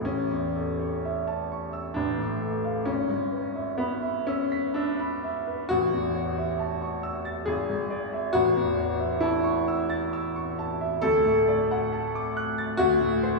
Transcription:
0.01 1.90 A1 medium
0.05 1.96 C#4 medium
0.31 0.70 E2 soft
0.55 0.94 A4 soft
0.80 1.18 C#5 soft
1.05 1.42 E5 soft
1.27 1.65 A5 soft
1.52 1.88 C#6 soft
1.73 1.97 E6 soft
1.94 2.85 A1 medium
1.94 2.87 D4 medium
2.18 2.55 A2 soft
2.42 2.78 A4 soft
2.65 2.88 F5 soft
2.86 5.65 G#1 medium
2.86 3.78 C#4 medium
3.08 3.46 G#2 soft
3.32 3.69 B4 soft
3.56 3.93 E5 soft
3.78 4.26 B3 medium
3.78 4.17 B5 soft
4.02 4.41 E5 soft
4.27 4.75 C#4 medium
4.27 4.66 E6 medium
4.52 4.90 B6 medium
4.74 5.69 D4 medium
4.74 5.14 E6 soft
4.99 5.37 B5 soft
5.24 5.61 E5 soft
5.47 5.70 B4 soft
5.69 7.43 A1 medium
5.69 7.47 F#4 loud
5.93 6.28 E2 soft
6.15 6.50 C#5 soft
6.38 6.72 E5 soft
6.59 6.94 A5 soft
6.82 7.17 C#6 soft
7.03 7.38 E6 medium
7.25 7.47 A6 medium
7.46 8.31 G#1 medium
7.46 8.33 G#4 medium
7.70 8.04 G#2 soft
7.90 8.25 D5 medium
8.13 8.34 E5 medium
8.33 10.99 A1 medium
8.33 9.20 F#4 loud
8.56 8.91 E2 medium
8.77 9.12 C#5 medium
8.99 9.34 E5 soft
9.21 9.65 E4 medium
9.21 9.57 A5 medium
9.44 9.80 C#6 medium
9.68 10.04 E6 medium
9.90 10.26 A6 medium
10.13 10.49 E6 medium
10.36 10.71 C#6 medium
10.59 10.94 A5 medium
10.81 11.03 E5 medium
11.02 12.75 D2 medium
11.02 12.78 A4 loud
11.25 11.60 A2 medium
11.48 11.83 D5 medium
11.71 12.05 F#5 medium
11.93 12.27 A5 medium
12.15 12.49 D6 medium
12.37 12.71 F#6 medium
12.58 12.79 A6 medium
12.77 13.39 D2 medium
12.77 13.39 F#4 loud
13.01 13.35 A2 medium
13.23 13.39 C5 medium

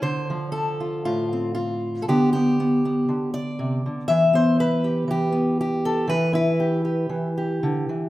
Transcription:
0.02 2.05 D3 medium
0.02 0.51 C5 medium
0.30 2.09 F3 medium
0.52 1.56 A4 medium
0.80 1.04 F4 soft
1.05 2.05 A2 soft
1.05 1.53 F4 medium
1.33 2.06 C4 soft
1.55 2.07 F4 medium
2.02 2.08 A4 medium
2.08 3.07 D3 medium
2.08 2.34 B3 medium
2.08 2.32 G4 medium
2.33 2.59 B3 medium
2.33 3.33 G4 medium
2.60 2.85 B3 medium
2.85 4.33 B3 soft
3.09 3.85 D3 medium
3.34 4.07 D5 medium
3.59 3.84 C3 medium
3.86 4.09 D3 medium
4.08 5.07 E3 medium
4.08 4.83 E5 loud
4.33 5.31 B3 medium
4.33 4.59 C5 medium
4.60 5.58 B4 medium
4.84 5.09 G4 soft
5.08 6.07 E3 medium
5.08 5.59 G4 medium
5.32 6.05 B3 soft
5.61 6.09 G4 medium
5.85 6.09 A4 medium
6.07 7.09 E3 medium
6.07 6.34 B4 loud
6.33 8.09 E4 medium
6.33 7.89 B4 medium
6.60 6.83 G4 soft
6.85 7.36 G4 soft
7.09 7.62 E3 medium
7.38 8.09 G4 soft
7.63 7.89 D3 medium
7.89 8.09 E3 soft

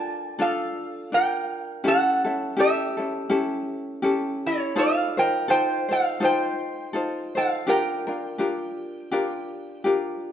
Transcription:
0.00 0.38 D4 medium
0.00 0.39 F4 medium
0.00 0.39 A4 medium
0.00 0.38 A#4 medium
0.00 0.36 D5 medium
0.00 0.43 A5 loud
0.39 1.11 D4 medium
0.39 1.12 F4 medium
0.39 1.16 A4 medium
0.39 1.09 A4 medium
0.39 1.09 F5 medium
1.12 1.84 D4 medium
1.12 1.84 F4 medium
1.12 1.84 A#4 medium
1.12 1.82 A#4 medium
1.12 1.88 G5 medium
1.84 2.25 C#4 medium
1.84 2.25 E4 medium
1.84 2.25 G4 medium
1.84 2.23 A4 medium
1.84 2.55 A4 medium
1.88 2.60 F#5 loud
2.25 2.56 C#4 soft
2.25 2.57 E4 medium
2.25 2.57 A4 soft
2.57 2.98 C#4 medium
2.57 2.97 E4 medium
2.57 2.98 G4 medium
2.57 4.41 G4 medium
2.57 2.96 A4 medium
2.57 4.51 E5 medium
2.97 3.28 C#4 soft
2.97 3.29 E4 soft
2.97 3.30 A4 soft
3.30 4.02 C#4 medium
3.30 4.02 E4 medium
3.30 4.01 G4 medium
3.30 4.04 A4 medium
4.02 4.76 C#4 medium
4.02 4.76 E4 medium
4.02 4.75 G4 medium
4.02 4.76 A4 medium
4.46 4.75 E4 medium
4.46 4.78 C#5 medium
4.76 5.17 D#4 medium
4.76 5.17 F4 medium
4.76 5.17 A4 medium
4.76 5.15 A4 medium
4.76 5.16 C5 medium
4.76 5.19 F5 medium
5.17 5.48 D#4 soft
5.17 5.49 F4 medium
5.17 5.47 A#4 medium
5.17 5.49 C5 medium
5.17 5.50 G5 medium
5.48 5.90 D#4 medium
5.48 5.89 F4 medium
5.48 5.89 A4 medium
5.48 5.87 C5 medium
5.48 5.88 C5 medium
5.48 5.92 G5 medium
5.89 6.19 D#4 soft
5.89 6.20 F4 soft
5.89 6.20 A4 medium
5.89 6.21 C5 soft
5.89 6.24 F5 medium
6.20 6.93 D#4 medium
6.20 6.94 F4 medium
6.20 6.92 A4 medium
6.20 6.94 C5 medium
6.20 7.32 C5 medium
6.25 7.37 G5 medium
6.93 7.35 D#4 medium
6.93 7.35 F4 medium
6.93 7.35 A4 medium
6.93 7.34 C5 medium
7.35 7.67 D#4 soft
7.35 7.67 F4 soft
7.35 7.66 A4 medium
7.35 7.67 C5 medium
7.35 7.69 F5 medium
7.67 8.07 D4 medium
7.67 8.07 F4 medium
7.67 8.08 G4 medium
7.67 8.06 A#4 medium
7.67 9.82 A#4 medium
7.67 9.82 G5 medium
8.07 8.38 D4 soft
8.07 8.39 F4 medium
8.07 8.39 A#4 medium
8.38 9.12 D4 medium
8.38 9.12 F4 medium
8.38 9.10 G4 medium
8.38 9.13 A#4 medium
9.12 9.85 D4 medium
9.12 9.85 F4 medium
9.12 9.83 G4 medium
9.12 9.86 A#4 medium
9.84 10.32 D4 medium
9.84 10.32 F4 medium
9.84 10.32 G4 medium
9.84 10.32 A#4 medium

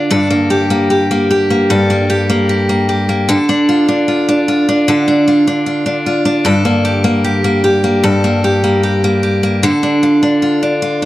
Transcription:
0.00 2.00 D3 medium
0.00 0.30 D4 soft
0.00 0.19 F4 soft
0.00 0.11 A4 soft
0.11 1.69 G2 medium
0.11 1.70 A4 soft
0.30 0.69 A#3 soft
0.50 0.89 G4 soft
0.70 1.10 A#3 soft
0.90 1.29 G4 soft
1.11 1.49 A#3 soft
1.31 2.08 G4 soft
1.50 1.89 A#3 soft
1.70 3.37 G2 medium
1.70 3.29 A4 medium
1.90 2.28 A#3 soft
2.10 2.48 G4 soft
2.30 2.68 A#3 soft
2.49 2.88 G4 soft
2.69 3.08 A#3 soft
2.89 3.37 G4 soft
3.09 3.37 A#3 soft
3.29 4.88 D3 medium
3.29 4.89 A4 medium
3.49 3.88 D4 medium
3.69 4.07 F4 soft
3.88 4.28 D4 soft
4.08 4.47 F4 soft
4.29 4.68 D4 soft
4.48 5.26 F4 soft
4.69 5.07 D4 soft
4.88 8.38 D3 medium
4.88 6.45 A4 soft
5.08 5.47 D4 soft
5.28 5.65 F4 soft
5.47 5.85 D4 soft
5.66 6.05 F4 soft
5.86 6.25 D4 soft
6.06 6.53 F4 soft
6.25 6.65 D4 soft
6.45 8.02 G2 medium
6.45 8.04 A4 medium
6.65 7.03 A#3 soft
6.85 7.23 G4 medium
7.04 7.43 A#3 medium
7.24 7.63 G4 soft
7.44 7.83 A#3 soft
7.64 8.43 G4 soft
7.84 8.23 A#3 soft
8.03 9.70 G2 medium
8.03 9.64 A4 medium
8.24 8.63 A#3 soft
8.44 8.82 G4 medium
8.64 9.03 A#3 soft
8.83 9.22 G4 soft
9.04 9.42 A#3 soft
9.23 9.71 G4 soft
9.43 9.71 A#3 soft
9.63 11.05 D3 medium
9.63 11.05 A4 medium
9.83 10.21 D4 soft
10.03 10.42 F4 soft
10.23 10.61 D4 soft
10.42 10.82 F4 soft
10.63 11.01 D4 soft
10.82 11.05 F4 soft

